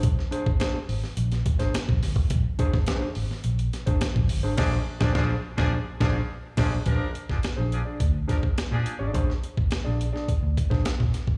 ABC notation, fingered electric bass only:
X:1
M:4/4
L:1/16
Q:1/4=105
K:Bbmix
V:1 name="Fingered electric bass" clef=bass
B,,, z2 A,,, z2 A,,, z B,,,2 z A,,, z B,,, G,,, A,,, | B,,, z2 A,,, z2 A,,, z B,,,2 z A,,, z B,,, G,,, A,,, | B,,,2 z B,,, B,,,2 z B,,,2 z B,,,2 z2 B,,,2 | B,,, z2 A,,, z B,,,2 z D,,2 z3 B,, z A,,, |
B,,, z2 A,,, z B,,,2 z2 D,, z B,,, z B,, z A,,, |]